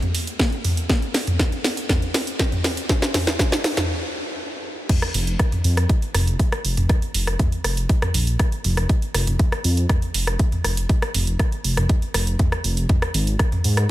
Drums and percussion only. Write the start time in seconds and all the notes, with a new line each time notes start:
0.02 closed hi-hat, mid tom
0.15 open hi-hat
0.27 closed hi-hat
0.39 kick, snare, closed hi-hat
0.52 closed hi-hat
0.64 mid tom, open hi-hat
0.77 closed hi-hat
0.89 kick, snare, closed hi-hat
1.02 closed hi-hat
1.14 snare, open hi-hat
1.27 closed hi-hat, mid tom
1.39 kick, snare, closed hi-hat
1.52 closed hi-hat
1.64 snare, open hi-hat
1.77 closed hi-hat
1.89 kick, snare, closed hi-hat, mid tom
2.02 closed hi-hat
2.14 snare, open hi-hat
2.27 closed hi-hat
2.39 kick, snare, closed hi-hat
2.52 closed hi-hat, mid tom
2.64 snare, open hi-hat
2.77 closed hi-hat
2.89 kick, snare, closed hi-hat
3.02 snare, closed hi-hat
3.14 snare, mid tom, open hi-hat
3.27 snare, closed hi-hat
3.39 kick, snare, closed hi-hat
3.52 snare, closed hi-hat
3.64 snare, open hi-hat
3.77 snare, closed hi-hat, mid tom
4.89 kick, closed hi-hat, mid tom, crash
5.02 cross-stick, closed hi-hat
5.14 open hi-hat
5.27 closed hi-hat
5.39 kick, cross-stick, closed hi-hat
5.52 closed hi-hat, mid tom
5.64 open hi-hat
5.77 cross-stick, closed hi-hat
5.89 kick, closed hi-hat
6.02 closed hi-hat
6.14 cross-stick, mid tom, open hi-hat
6.27 closed hi-hat
6.39 kick, closed hi-hat
6.52 cross-stick, closed hi-hat
6.65 open hi-hat
6.77 closed hi-hat, mid tom
6.89 kick, cross-stick, closed hi-hat
7.02 closed hi-hat
7.14 open hi-hat
7.27 cross-stick, closed hi-hat
7.39 kick, closed hi-hat, mid tom
7.52 closed hi-hat
7.64 cross-stick, open hi-hat
7.77 closed hi-hat
7.89 kick, closed hi-hat
8.02 cross-stick, closed hi-hat, mid tom
8.14 open hi-hat
8.27 closed hi-hat
8.39 kick, cross-stick, closed hi-hat
8.52 closed hi-hat
8.64 mid tom, open hi-hat
8.77 cross-stick, closed hi-hat
8.89 kick, closed hi-hat
9.02 closed hi-hat
9.14 cross-stick, open hi-hat
9.27 closed hi-hat, mid tom
9.39 kick, closed hi-hat
9.52 cross-stick, closed hi-hat
9.64 open hi-hat
9.77 closed hi-hat
9.89 kick, cross-stick, closed hi-hat, mid tom
10.02 closed hi-hat
10.14 open hi-hat
10.27 cross-stick, closed hi-hat
10.39 kick, closed hi-hat
10.52 closed hi-hat, mid tom
10.64 cross-stick, open hi-hat
10.77 closed hi-hat
10.89 kick, closed hi-hat
11.02 cross-stick, closed hi-hat
11.14 mid tom, open hi-hat
11.27 closed hi-hat
11.39 kick, cross-stick, closed hi-hat
11.52 closed hi-hat
11.64 open hi-hat
11.77 cross-stick, closed hi-hat, mid tom
11.89 kick, closed hi-hat
12.02 closed hi-hat
12.14 cross-stick, open hi-hat
12.27 closed hi-hat
12.39 kick, closed hi-hat, mid tom
12.52 cross-stick, closed hi-hat
12.64 open hi-hat
12.77 closed hi-hat
12.89 kick, closed hi-hat, mid tom
13.02 cross-stick, closed hi-hat
13.14 open hi-hat
13.27 closed hi-hat
13.39 kick, cross-stick, closed hi-hat
13.52 closed hi-hat, mid tom
13.64 open hi-hat
13.77 cross-stick, closed hi-hat